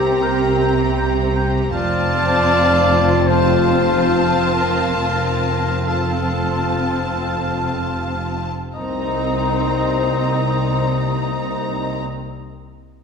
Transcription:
0.00 1.69 C2 medium
0.00 1.69 C3 medium
0.00 1.70 A#3 medium
0.00 1.70 C4 medium
0.00 0.24 G4 medium
0.00 1.69 G4 medium
0.00 1.70 G4 medium
0.00 1.70 A#5 soft
0.22 0.60 A#4 medium
0.22 0.39 G5 medium
0.22 0.31 A#5 medium
0.61 0.77 G5 medium
0.61 0.70 A#5 medium
0.97 1.14 G5 medium
0.97 1.06 A#5 medium
1.36 1.52 G5 medium
1.36 1.44 A#5 medium
1.71 4.93 F1 medium
1.71 4.93 F2 medium
1.71 4.79 C4 medium
1.71 3.25 C4 medium
1.71 4.79 F4 medium
1.71 3.25 F4 medium
1.71 3.29 D5 loud
1.71 3.25 F5 medium
1.71 3.25 A5 medium
1.71 3.26 A5 medium
3.27 5.84 C4 medium
3.27 5.83 F4 medium
3.27 4.55 C5 medium
3.27 5.84 F5 medium
3.27 5.84 A5 medium
4.54 4.96 A#4 medium
4.96 8.46 F1 medium
4.96 8.46 F2 soft
4.96 8.30 C4 medium
4.96 8.30 F4 soft
4.96 5.88 A#4 medium
5.87 8.47 C4 soft
5.87 8.46 F4 soft
5.87 8.26 A4 medium
5.87 8.31 F5 soft
5.87 8.31 A5 soft
5.87 8.47 A5 soft
8.74 11.99 C2 soft
8.74 11.99 C2 medium
8.74 12.01 A#3 soft
8.74 12.00 C4 soft
8.74 11.99 D#4 soft
8.74 12.00 D#4 soft
8.74 11.99 C5 medium
8.74 11.98 D#5 soft
8.74 11.99 A#5 soft

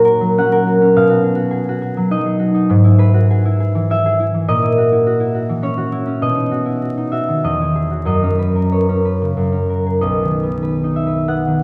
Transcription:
0.00 0.98 A#2 medium
0.00 0.20 F#3 medium
0.00 0.66 F#4 medium
0.00 0.98 C#5 medium
0.00 0.37 F#5 medium
0.05 0.51 A#4 medium
0.21 1.96 F#3 medium
0.38 0.80 C#4 medium
0.38 2.72 F#5 loud
0.52 0.98 A#4 medium
0.67 1.08 F#4 medium
0.81 0.98 C#4 soft
0.96 2.71 B2 medium
0.96 2.93 F5 loud
1.10 1.34 F#4 medium
1.24 1.50 G#4 medium
1.36 1.61 F#4 medium
1.51 1.81 G#4 medium
1.69 2.38 F#4 medium
1.82 2.25 G#4 medium
1.97 2.72 F#3 medium
2.11 2.53 D#4 medium
2.11 2.71 D#5 medium
2.26 2.97 G#4 soft
2.39 2.71 F#4 medium
2.54 2.71 D#4 medium
2.70 4.51 G#2 medium
2.84 3.44 E4 medium
2.98 3.29 G#4 medium
2.98 4.51 B4 medium
3.14 3.39 F#4 medium
3.31 3.59 G#4 medium
3.45 3.89 E4 medium
3.60 4.05 G#4 medium
3.75 4.33 E3 medium
3.90 4.19 E4 medium
3.90 6.23 E5 loud
4.06 4.51 G#4 medium
4.20 4.62 E4 medium
4.34 4.51 E3 medium
4.48 6.23 A#2 medium
4.48 6.21 D#5 loud
4.63 4.91 E4 medium
4.78 5.06 F#4 medium
4.92 5.16 E4 soft
5.07 5.33 F#4 medium
5.20 5.91 E4 medium
5.35 5.76 F#4 medium
5.49 6.23 E3 soft
5.62 6.05 C#4 medium
5.62 6.23 C#5 medium
5.78 6.50 F#4 soft
5.92 6.23 E4 medium
6.07 6.23 C#4 soft
6.22 7.44 B2 medium
6.22 7.43 D#5 medium
6.35 6.96 D#4 soft
6.51 6.81 F#4 soft
6.66 6.90 E4 soft
6.82 7.11 F#4 soft
6.97 7.45 D#4 soft
7.12 7.45 F#4 soft
7.12 7.64 E5 medium
7.28 7.45 D#3 soft
7.44 8.09 E2 medium
7.44 8.05 D#5 medium
7.61 8.10 E4 soft
7.75 8.09 G#4 soft
7.91 8.17 F#4 soft
8.05 9.36 F#2 medium
8.05 9.40 D#5 medium
8.23 8.88 C#4 soft
8.39 8.71 B4 soft
8.55 8.83 A#4 soft
8.72 9.04 B4 soft
8.72 10.05 C#5 medium
8.89 9.51 C#4 soft
9.05 9.40 B4 soft
9.22 9.40 C#3 soft
9.37 10.04 F#2 soft
9.52 10.03 C#4 soft
9.70 10.04 A#4 soft
9.86 10.12 G#4 soft
10.01 11.63 B1 medium
10.01 11.63 D#5 medium
10.23 11.46 D#3 soft
10.43 11.27 B3 soft
10.63 11.05 B4 soft
10.84 11.63 D#4 soft
10.96 11.47 E5 medium
11.07 11.63 B4 soft
11.28 11.63 B3 soft
11.28 11.63 F#5 medium
11.47 11.63 D#3 soft

